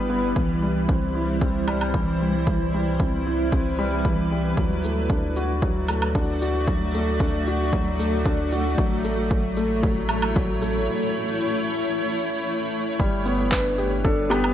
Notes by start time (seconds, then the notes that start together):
Already playing: G1 G3 B3 D4 E4 G4 B4
0.10 B3
0.35 C2 E3 E4 C5, kick
0.62 G3
0.88 C4, kick
1.15 E4
1.41 C4, kick
1.67 G3, low woodblock
1.81 low woodblock
1.94 E3, kick
2.21 G3
2.46 E3 B4, kick
2.74 G3
3.00 C4, kick
3.27 E4
3.52 C4, kick
3.79 G3
4.05 E3, kick
4.32 G3
4.56 D2 F#3 A3 F#4 D5, kick
4.84 A3, shaker
5.10 D4, kick
5.36 F#4, shaker
5.62 F#3, kick
5.88 A3, low woodblock, shaker
6.02 low woodblock
6.15 D4, kick
6.42 F#4, shaker
6.68 F#3, kick
6.94 A3, shaker
7.20 D4, kick
7.47 F#4, shaker
7.73 F#3, kick
7.99 A3, shaker
8.26 D4, kick
8.52 F#4, shaker
8.77 A1 F#3 E4 C#5, kick
9.04 A3, shaker
9.31 F#3, kick
9.57 A3, shaker
9.83 F#3, kick
10.09 A3, low woodblock, shaker
10.22 low woodblock
10.36 F#3, kick
10.62 A3, shaker
12.99 G1 G3 D4 B4, kick
13.26 B3, shaker
13.51 D4 B4, kick, clap
13.78 G4, shaker
14.04 D4 A4, kick
14.30 B3 G4, low woodblock, shaker
14.44 low woodblock